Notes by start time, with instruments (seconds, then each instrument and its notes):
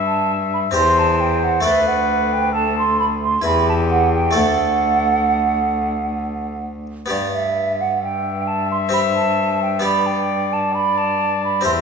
Already playing: harpsichord G2 D4 G4 B4, cello G2, trumpet E5
0.06 flute A5
0.54 flute B5
0.71 harpsichord C4 G4 C5, flute C6
0.75 cello E2, harpsichord E2, trumpet C5
0.99 flute A5
1.20 flute G5
1.44 flute F#5
1.61 harpsichord A3 A4 D5, flute E5
1.65 cello D2, harpsichord D2, trumpet B4
1.88 flute F#5
2.33 flute G5
2.53 trumpet A4, flute A5
2.79 flute C6
3.00 flute B5
3.23 flute C6
3.42 cello E2, harpsichord E2 E4 B4, trumpet G4
3.46 flute B5
3.69 flute A5
3.90 flute F#5
4.14 flute G5
4.31 harpsichord A3 A4 D5
4.35 harpsichord D2, cello D2, trumpet A4, flute F#5
7.06 harpsichord B3 G4 D5
7.10 harpsichord G2, cello G2, flute D5
7.34 flute E5
7.81 flute F#5
8.01 trumpet E5, flute G5
8.48 flute A5
8.72 flute C6
8.89 harpsichord C4 G4 E5
8.93 flute B5
9.16 flute A5
9.62 flute G5
9.79 harpsichord B3 G4 D5
9.84 trumpet D5, flute B5
10.07 flute G5
10.53 flute A5
10.73 trumpet D5, flute B5
10.98 flute A5
11.45 flute B5
11.61 harpsichord C4 G4 C5, trumpet E5
11.65 harpsichord E2, cello E2, flute C6